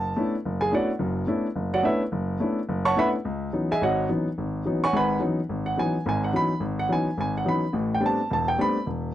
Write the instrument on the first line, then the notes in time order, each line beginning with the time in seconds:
grand piano
Already playing: F#1 A5
0.16 A3 B3 C#4 D4 E4
0.45 F#1
0.61 G#4 G#5
0.71 A3 B3 C#4 D4 E4 F#4 C#5 D5 F#5
0.99 F#1 F#2
1.27 A3 B3 C#4 D4 E4
1.56 F#1
1.74 F#4 C#5 D5 F#5
1.83 A3 B3 C#4 D4 E4 B4 C#5 E5
2.12 F#1
2.40 A3 B3 C#4 D4 E4
2.69 F#1
2.85 C#5 F#5 A5 C#6
2.96 A3 B3 C#4 D4 E4 B4 E5 F#5 B5
3.25 C#2
3.53 E3 F#3 B3 C#4 D#4
3.71 G#4 D#5 E5 G#5
3.81 G#1 F#4 C#5 D#5 F#5
4.09 E3 F#3 B3 C#4 D#4
4.38 G#1
4.65 E3 F#3 B3 C#4 D#4
4.84 C#5 F#5 G#5 C#6
4.93 G#1 G#2 B4 F#5 G#5 B5
5.19 E3 F#3 B3 C#4 D#4
5.49 G#1
5.66 F#5
5.77 E3 F#3 B3 C#4 D#4 G#5
6.06 G#1 G#2 G#5
6.24 F#5
6.33 E3 F#3 B3 C#4 D#4 B5
6.60 G#1
6.79 F#5
6.89 E3 F#3 B3 C#4 D#4 G#5
7.18 G#1 G#5
7.37 F#5
7.45 E3 F#3 B3 C#4 D#4 B5
7.73 A1 A2
7.95 G5
8.00 G3 A3 B3 C4 D4
8.06 A5
8.31 E1 A5
8.48 G5
8.58 G3 A3 B3 C4 D4 B5
8.86 E1